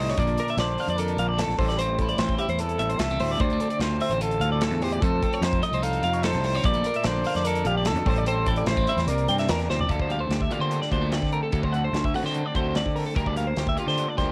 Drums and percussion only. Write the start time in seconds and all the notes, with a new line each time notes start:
0.09 snare
0.18 kick, closed hi-hat
0.27 closed hi-hat
0.38 closed hi-hat
0.48 closed hi-hat
0.58 snare, closed hi-hat
0.78 open hi-hat
0.88 closed hi-hat
0.98 closed hi-hat
1.08 closed hi-hat
1.18 closed hi-hat
1.39 snare, closed hi-hat
1.49 snare, closed hi-hat
1.59 kick, open hi-hat
1.69 snare, closed hi-hat
1.79 closed hi-hat
1.99 kick, closed hi-hat
2.09 closed hi-hat
2.18 snare, closed hi-hat
2.28 kick, closed hi-hat
2.39 closed hi-hat
2.49 closed hi-hat
2.59 closed hi-hat
2.69 closed hi-hat
2.79 closed hi-hat
2.90 closed hi-hat
2.99 snare, closed hi-hat
3.10 closed hi-hat
3.20 open hi-hat
3.40 kick, closed hi-hat
3.50 closed hi-hat
3.60 closed hi-hat
3.70 closed hi-hat
3.80 snare, closed hi-hat
4.00 open hi-hat
4.11 closed hi-hat
4.21 closed hi-hat
4.31 closed hi-hat
4.41 closed hi-hat
4.61 snare, closed hi-hat
4.72 closed hi-hat
4.82 open hi-hat
4.92 closed hi-hat
5.02 kick, closed hi-hat
5.22 kick, closed hi-hat
5.33 closed hi-hat
5.42 snare, closed hi-hat
5.53 kick, closed hi-hat
5.63 closed hi-hat
5.73 closed hi-hat
5.83 closed hi-hat
5.93 closed hi-hat
6.03 closed hi-hat
6.13 closed hi-hat
6.23 snare, closed hi-hat
6.33 snare, closed hi-hat
6.44 open hi-hat
6.64 kick, closed hi-hat
6.73 closed hi-hat
6.84 closed hi-hat
6.94 closed hi-hat
7.04 snare, closed hi-hat
7.24 open hi-hat
7.35 snare, closed hi-hat
7.45 closed hi-hat
7.55 closed hi-hat
7.65 closed hi-hat
7.85 snare, closed hi-hat
7.96 closed hi-hat
8.06 kick, open hi-hat
8.16 closed hi-hat
8.26 closed hi-hat
8.46 kick, closed hi-hat
8.56 closed hi-hat
8.66 snare, closed hi-hat
8.77 kick, closed hi-hat
8.87 closed hi-hat
8.98 snare, closed hi-hat
9.08 closed hi-hat
9.18 closed hi-hat
9.28 closed hi-hat
9.38 snare, closed hi-hat
9.49 snare, closed hi-hat
9.59 snare, closed hi-hat
9.70 snare
9.79 floor tom
9.89 kick, closed hi-hat
10.00 kick
10.10 closed hi-hat
10.31 snare, closed hi-hat
10.41 kick
10.51 closed hi-hat
10.71 closed hi-hat
10.82 snare
10.92 kick, closed hi-hat
11.12 snare, closed hi-hat
11.22 kick, snare
11.32 closed hi-hat
11.52 kick, closed hi-hat
11.63 kick
11.74 closed hi-hat
11.94 snare, closed hi-hat
12.04 kick
12.14 open hi-hat
12.25 snare
12.35 closed hi-hat
12.55 kick, closed hi-hat
12.75 snare, closed hi-hat
12.86 kick
12.96 open hi-hat
13.16 kick, closed hi-hat
13.26 kick
13.36 closed hi-hat
13.57 snare, closed hi-hat
13.67 kick
13.77 closed hi-hat
13.89 snare
13.98 closed hi-hat
14.18 kick, snare, closed hi-hat